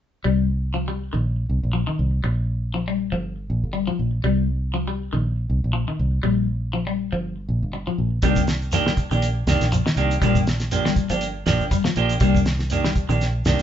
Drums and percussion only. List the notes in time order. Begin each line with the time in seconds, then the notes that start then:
8.22 kick, closed hi-hat, shekere
8.36 kick, shekere
8.47 snare, closed hi-hat
8.62 shekere
8.72 snare, closed hi-hat, shekere
8.87 snare
8.97 kick, closed hi-hat, shekere
9.11 shekere
9.22 closed hi-hat, shekere
9.47 snare, closed hi-hat, shekere
9.61 snare, closed hi-hat, shekere
9.72 closed hi-hat, shekere
9.86 snare, shekere
9.97 closed hi-hat
10.11 closed hi-hat, shekere
10.22 kick, closed hi-hat, shekere
10.35 kick, shekere
10.47 snare, closed hi-hat
10.60 snare, closed hi-hat, shekere
10.71 closed hi-hat, shekere
10.86 snare
10.96 kick, closed hi-hat, shekere
11.09 closed hi-hat, shekere
11.21 closed hi-hat, shekere
11.46 snare, closed hi-hat, shekere
11.60 shekere
11.71 kick, closed hi-hat, shekere
11.85 snare, shekere
11.96 closed hi-hat
12.09 closed hi-hat, shekere
12.20 kick, closed hi-hat, shekere
12.35 kick, shekere
12.46 snare, closed hi-hat
12.59 snare, shekere
12.70 closed hi-hat, shekere
12.84 snare
12.96 kick, closed hi-hat, shekere
13.10 shekere
13.21 snare, closed hi-hat, shekere
13.45 snare, closed hi-hat, shekere